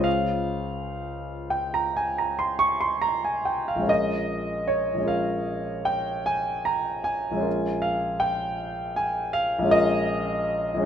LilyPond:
\new Staff \with { instrumentName = "Grand piano" } { \time 9/8 \key bes \dorian \tempo 4. = 50 << { f''4.~ f''16 g''16 bes''16 aes''16 bes''16 c'''16 des'''16 c'''16 bes''16 aes''16 g''16 f''16 | ees''4 des''8 f''4 g''8 aes''8 bes''8 aes''8~ | aes''8 f''8 g''4 aes''8 f''8 ees''4. | } \\ { <des, aes des' f' c''>1~ <des, aes des' f' c''>8 | <bes,, aes des' f' bes'>4. <bes,, aes des' f' bes'>2. | <bes,, aes des' f' bes'>2. <bes,, aes des' f' bes'>4. | } >> }